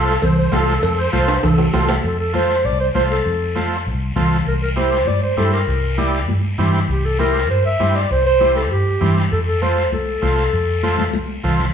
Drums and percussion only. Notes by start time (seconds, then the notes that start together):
0.07 short guiro
0.22 cowbell, low conga, long guiro
0.52 high conga, low timbale, short guiro
0.67 short guiro
0.83 cowbell, long guiro
1.13 high conga, short guiro
1.28 high timbale, short guiro
1.43 cowbell, low conga, high timbale, long guiro
1.58 low timbale
1.73 high conga, low timbale, short guiro
1.89 low timbale, short guiro
2.04 long guiro
2.34 high conga, short guiro
2.50 short guiro
2.65 long guiro
2.95 high conga, short guiro
3.11 short guiro
3.26 long guiro
3.56 high conga, short guiro
3.71 short guiro
3.86 long guiro
4.16 high conga, low conga, short guiro
4.32 short guiro
4.46 long guiro
4.77 high conga, short guiro
4.92 short guiro
5.07 high conga, long guiro
5.37 high conga, short guiro
5.53 short guiro
5.68 long guiro
5.98 high conga, short guiro
6.13 short guiro
6.28 high conga, long guiro
6.59 high conga, low conga, short guiro
6.74 short guiro
6.89 long guiro
7.19 high conga, short guiro
7.35 short guiro
7.50 long guiro
7.80 high conga, short guiro
7.95 short guiro
8.11 long guiro
8.41 high conga, short guiro
8.56 short guiro
8.71 long guiro
9.01 high conga, low conga, short guiro
9.17 short guiro
9.32 long guiro
9.62 high conga, short guiro
9.77 short guiro
9.92 high conga, long guiro
10.23 high conga, short guiro
10.38 short guiro
10.53 long guiro
10.83 high conga, short guiro
10.98 high conga, short guiro
11.13 high conga, long guiro
11.44 low conga, short guiro
11.59 low conga, short guiro